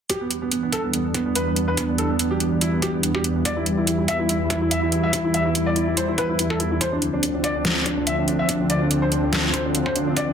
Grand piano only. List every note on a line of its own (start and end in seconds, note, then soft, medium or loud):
0.10 0.17 G4 medium
0.21 0.27 B3 medium
0.42 0.48 B3 medium
0.52 0.59 B3 medium
0.63 0.69 B3 medium
0.73 0.80 A4 medium
0.84 0.90 B3 medium
0.94 1.01 B3 medium
1.15 1.22 B3 medium
1.26 1.32 B3 medium
1.36 1.43 B4 medium
1.47 1.53 B3 medium
1.56 1.64 B3 medium
1.68 1.74 B4 medium
1.77 1.85 B3 medium
1.89 1.95 B3 medium
1.98 2.06 A4 medium
2.10 2.16 B3 medium
2.19 2.27 B3 medium
2.31 2.37 G4 medium
2.40 2.48 B3 medium
2.52 2.58 B3 medium
2.61 2.69 E4 medium
2.73 2.79 B3 medium
2.82 2.90 G4 medium
2.94 3.00 B3 medium
3.03 3.11 B3 medium
3.15 3.21 G4 medium
3.24 3.32 B3 medium
3.36 3.42 B3 medium
3.45 3.53 D5 medium
3.57 3.63 E4 medium
3.77 3.84 E4 medium
3.87 3.95 E4 medium
3.99 4.05 E4 medium
4.08 4.16 E5 medium
4.19 4.26 E4 medium
4.29 4.37 E4 medium
4.50 4.58 E4 medium
4.61 4.68 E4 medium
4.71 4.79 E5 medium
4.82 4.89 E4 medium
4.92 5.00 E4 medium
5.03 5.10 E5 medium
5.13 5.21 E4 medium
5.24 5.31 E4 medium
5.34 5.42 E5 medium
5.45 5.52 E4 medium
5.55 5.63 E4 medium
5.66 5.73 D5 medium
5.76 5.83 E4 medium
5.87 5.94 E4 medium
5.97 6.04 C5 medium
6.08 6.15 E4 medium
6.18 6.25 B4 medium
6.29 6.36 E4 medium
6.39 6.46 E4 medium
6.50 6.57 A4 medium
6.60 6.67 E4 medium
6.71 6.78 E4 medium
6.81 6.88 C5 medium
6.92 6.99 D4 medium
7.13 7.20 D4 medium
7.23 7.30 D4 medium
7.34 7.41 D4 medium
7.44 7.51 D5 medium
7.55 7.62 D4 medium
7.65 7.72 D4 medium
7.86 7.93 D4 medium
7.97 8.04 D4 medium
8.07 8.14 E5 medium
8.18 8.24 D4 medium
8.28 8.35 D4 medium
8.39 8.45 E5 medium
8.49 8.56 D4 medium
8.60 8.66 D4 medium
8.70 8.77 D5 medium
8.81 8.87 D4 medium
8.91 8.98 D4 medium
9.02 9.08 C5 medium
9.12 9.19 D4 medium
9.23 9.29 D4 medium
9.33 9.40 A4 medium
9.44 9.50 D4 medium
9.54 9.61 C5 medium
9.65 9.71 D4 medium
9.75 9.82 D4 medium
9.86 9.92 C5 medium
9.96 10.03 D4 medium
10.07 10.13 D4 medium
10.17 10.24 D5 medium
10.28 10.33 D4 medium